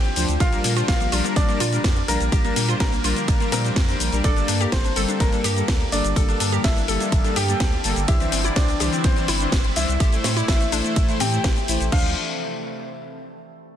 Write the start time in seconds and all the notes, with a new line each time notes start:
Already playing: A1 D3 F3 A3 C4 G4 G5
0.04 closed hi-hat
0.16 D2 F3 D4 C5, open hi-hat, shaker
0.29 D2, closed hi-hat, shaker
0.40 A#1 G3 A#3 D4 F4 A#4 F5, kick, closed hi-hat, ride, shaker
0.52 G3 A#3 D4 A#4, closed hi-hat, shaker
0.64 A#2 A#3, open hi-hat, shaker
0.76 G3 D4 F4 C5, closed hi-hat, shaker
0.88 A#1 A#3 D4 F4 A#4 F5, kick, snare, closed hi-hat, ride, shaker
1.01 A#3, closed hi-hat, shaker
1.12 A#1 G3 D4 F4 A#4, open hi-hat, shaker
1.24 A#3, closed hi-hat, shaker
1.36 A#1 A#3 D4 A#4 D5, kick, snare, closed hi-hat, ride, shaker
1.48 G3 A#3 D4 A#4, closed hi-hat, shaker
1.60 A#2 F4, open hi-hat, shaker
1.72 G3 D4 A#4, closed hi-hat, shaker
1.84 F2 A#4, kick, snare, closed hi-hat, ride, shaker
1.97 closed hi-hat
2.08 A#1 G3 A#3 D4 A#4, open hi-hat, shaker
2.21 A#1, closed hi-hat, shaker
2.32 A#1 G3 D4 G4 A#4, kick, closed hi-hat, ride, shaker
2.44 G3 A#3 D4 A#4, closed hi-hat, shaker
2.56 A#2 A#3, open hi-hat, shaker
2.68 G3 D4 F4 C5, closed hi-hat, shaker
2.80 A#1 G3 A#3 D4 A#4, kick, snare, closed hi-hat, ride, shaker
2.92 A#3, closed hi-hat, shaker
3.04 A#1 G3 D4 F4 A#4, open hi-hat, shaker
3.16 A#3, closed hi-hat, shaker
3.28 A#1 G3 A#3 D4 A#4, kick, closed hi-hat, ride, shaker
3.40 G3 A#3 D4 A#4, closed hi-hat, shaker
3.52 A#2 G3 A#3 C4 D4 A#4 C5, open hi-hat, shaker
3.64 G3 D4 C5, closed hi-hat, shaker
3.76 F2, kick, snare, closed hi-hat, ride, shaker
3.88 G3 D4 C5, closed hi-hat, shaker
4.00 A#1, open hi-hat, shaker
4.12 A#1 G3 D4 A#4, closed hi-hat, shaker
4.24 G1 D3 G3 A#3 D4 G4 A4 D5, kick, closed hi-hat, ride, shaker
4.36 G3 A#3 D4 A4, closed hi-hat, shaker
4.48 G2 D4, open hi-hat, shaker
4.60 G3 A#3 G4 A#4, closed hi-hat, shaker
4.72 G1 C4 D4 C5, kick, snare, closed hi-hat, ride, shaker
4.85 D4, closed hi-hat, shaker
4.96 G1 G3 A#3 A4, open hi-hat, shaker
5.08 D4, closed hi-hat, shaker
5.20 G1 G3 A#3 D4 A#4, kick, snare, closed hi-hat, ride, shaker
5.32 G3 A#3 D4 A4, closed hi-hat, shaker
5.44 G2 G4, open hi-hat, shaker
5.57 G3 A#3 A4, closed hi-hat, shaker
5.68 D2, kick, snare, closed hi-hat, ride, shaker
5.81 closed hi-hat
5.92 G1 G3 A#3 D4 A4 D5, open hi-hat, shaker
6.05 G1, closed hi-hat, shaker
6.16 G1 F3 G3 A#3 A4, kick, closed hi-hat, ride, shaker
6.28 G3 A#3 D4 A4, closed hi-hat, shaker
6.40 G2 D4, open hi-hat, shaker
6.52 G3 A#3 G4 A#4, closed hi-hat, shaker
6.64 G1 G3 A#3 D4 E4 A4 E5, kick, snare, closed hi-hat, ride, shaker
6.76 D4, closed hi-hat, shaker
6.88 G1 G3 A#3 A4, open hi-hat, shaker
7.00 D4, closed hi-hat, shaker
7.12 G1 G3 A#3 D4 A4, kick, closed hi-hat, ride, shaker
7.24 G3 A#3 D4 A4, closed hi-hat, shaker
7.36 G2 G4 G5, open hi-hat, shaker
7.48 G3 A#3 A4, closed hi-hat, shaker
7.60 D2 G3 A#3 A4, kick, snare, closed hi-hat, ride, shaker
7.72 closed hi-hat
7.84 G1 G3 A#3 A4, open hi-hat, shaker
7.96 G1, closed hi-hat, shaker
8.08 C2 E3 G3 C4 D4 E4 G4 C5 E5, kick, closed hi-hat, ride, shaker
8.20 E3 C4 D4 C5, closed hi-hat, shaker
8.32 G1 C4, open hi-hat, shaker
8.44 E3 D4 E4 D5, closed hi-hat, shaker
8.56 C2 E3 C4 D4 C5 D5, kick, snare, closed hi-hat, ride, shaker
8.68 C4, closed hi-hat, shaker
8.80 C2 E3 D4 G4 C5, open hi-hat, shaker
8.93 C4, closed hi-hat, shaker
9.04 C2 E3 C4 D4 C5, kick, snare, closed hi-hat, ride, shaker
9.16 E3 C4 D4 C5, closed hi-hat, shaker
9.28 G1 E4, open hi-hat, shaker
9.40 E3 D4 C5, closed hi-hat, shaker
9.52 G1 E3 C5, kick, snare, closed hi-hat, ride, shaker
9.64 closed hi-hat
9.76 C2 E3 D4 E4 C5 E5, open hi-hat, shaker
9.89 C2, closed hi-hat, shaker
10.00 A1 C3 E3 A3 E4 G4 C5, kick, closed hi-hat, ride, shaker
10.12 A3 E4 C5, closed hi-hat, shaker
10.24 A2 A3, snare, open hi-hat, shaker
10.36 A3 E4 D5, closed hi-hat, shaker
10.48 A1 A3 E4 C5 E5, kick, snare, closed hi-hat, ride, shaker
10.61 A3, closed hi-hat, shaker
10.72 A1 A3 D4 E4 C5, open hi-hat, shaker
10.84 A3, closed hi-hat, shaker
10.96 A1 A3 E4 C5, kick, closed hi-hat, ride, shaker
11.08 A3 E4 C5, closed hi-hat, shaker
11.20 A2 C4 G4 G5, open hi-hat, shaker
11.33 A3 E4 C5, closed hi-hat, shaker
11.44 A1 E4 C5, kick, snare, closed hi-hat, ride, shaker
11.56 closed hi-hat, shaker
11.68 A1 A3 E4 C5, open hi-hat, shaker
11.80 A1, closed hi-hat, shaker
11.92 D2 F3 D4 C5 F5, kick, crash